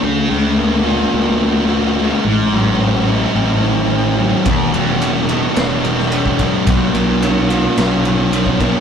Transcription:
<<
  \new Staff \with { instrumentName = "Distorted electric guitar" } { \time 4/4 \key d \major \tempo 4 = 108 d8 a8 b8 fis'8 b8 d8 b8 a8 | a,8 g8 cis'8 e'8 cis'8 e8 cis'8 g8 | e,8 g8 d'8 e'8 d'8 e8 d'8 g8 | b,8 b8 d'8 fis'8 d'8 fis8 d'8 b8 | }
  \new Staff \with { instrumentName = "Fingered electric bass" } { \clef bass \time 4/4 \key d \major d,8 d,4. d,2 | a,,8 a,,4. a,,2 | e,,8 e,,4. e,,2 | b,,8 b,,4. b,,2 | }
  \new DrumStaff \with { instrumentName = "Drums" } \drummode { \time 4/4 r4 r4 r4 r4 | r4 r4 r4 r4 | <bd cymr>8 cymr8 cymr8 cymr8 <cymr sn>8 cymr16 sn16 cymr16 bd16 <bd cymr>8 | <bd cymr>8 cymr8 cymr8 cymr8 <cymr sn>8 cymr8 cymr16 bd16 <bd cymr>8 | }
>>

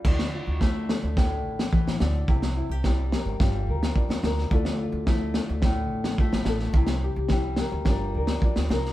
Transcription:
<<
  \new Staff \with { instrumentName = "Nylon-string guitar" } { \time 4/4 \key d \minor \tempo 4 = 107 << { e'8 f'8 e'8 a'8 e'2 | e'8 e'16 g'16 e'8 bes'8 f'8 bes'8 f'8 bes'8 | <a e' f' a'>8 f'8 e'8 a'8 e'4 f'8 a'8 | e'8 g'8 e'8 bes'8 <d' f' bes'>8 bes'8 f'8 bes'8 | } \\ { d4 a4 a,4 e8 d8 | c4 g4 g4 d'4 | d4 a4 a,4 a4 | c4 g4 g4 d'4 | } >> }
  \new Staff \with { instrumentName = "Upright bass" } { \clef bass \time 4/4 \key d \minor d,8. d,4 d,8. a,,8 r16 a,,16 d,8 | c,8. c,4 gis,,16 g,,8 d,8 r16 d,16 d,8 | d,8. d,4 d,8. a,,8 r16 a,,16 a,,8 | c,8. c,4 d,16 g,,8 d,8 r16 d,16 c,8 | }
  \new DrumStaff \with { instrumentName = "Drums" } \drummode { \time 4/4 <cymc bd>16 sn8. <bd sn>8 sn8 <bd sn>8. sn16 bd16 sn16 sn8 | bd16 sn8. <bd sn>8 sn8 <bd sn>8. sn16 bd16 sn16 sn16 sn16 | bd16 sn8. <bd sn>8 sn8 <bd sn>8. sn16 bd16 sn16 sn16 sn16 | bd16 sn8. <bd sn>8 sn8 <bd sn>8. sn16 bd16 sn16 sn16 sn16 | }
>>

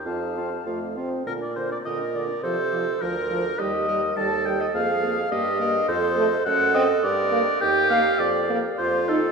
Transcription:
<<
  \new Staff \with { instrumentName = "Flute" } { \time 2/4 \key bes \major \tempo 4 = 104 a''4 r4 | bes'16 d''16 c''16 d''16 ees''8 d''8 | c''4 bes'4 | ees''4 a''8 g''16 ees''16 |
f''4 ees''4 | c''4 fis''8 dis''8 | d''4 g''8 f''8 | d''8. r16 c''8 a'8 | }
  \new Staff \with { instrumentName = "Oboe" } { \time 2/4 \key bes \major f''4. r8 | bes'16 d''16 c''16 d''16 ees''8 d''8 | c''4 bes'4 | ees''4 a''8 g''16 ees''16 |
f''4 ees''4 | c''4 fis''8 dis''8 | d''4 g''8 f''8 | d''8. r16 c''8 a'8 | }
  \new Staff \with { instrumentName = "Clarinet" } { \time 2/4 \key bes \major f'8 f'8 f'8 f'8 | r4 bes'4 | a'4 bes'4 | g'8 bes'8 a'4 |
aes'4 g'8 bes'8 | a'4 a'4 | bes'4 g'4~ | g'8 r8 f'4 | }
  \new Staff \with { instrumentName = "French horn" } { \time 2/4 \key bes \major c'8 c'8 a8 c'8 | d8 d8 d8 d8 | f8 f8 f8 f8 | g8 g8 g8 g8 |
bes8 bes8 bes8 bes8 | r8 a16 r8. c'16 r16 | r8 bes16 r8. bes16 r16 | r8 bes16 r8. ees'16 r16 | }
  \new Staff \with { instrumentName = "Bassoon" } { \clef bass \time 2/4 \key bes \major f,4 f,4 | bes,4 bes,4 | c4 d,4 | ees,4 ees,4 |
f,4 g,4 | f,4 fis,4 | g,4 ees,4 | f,4 f,4 | }
>>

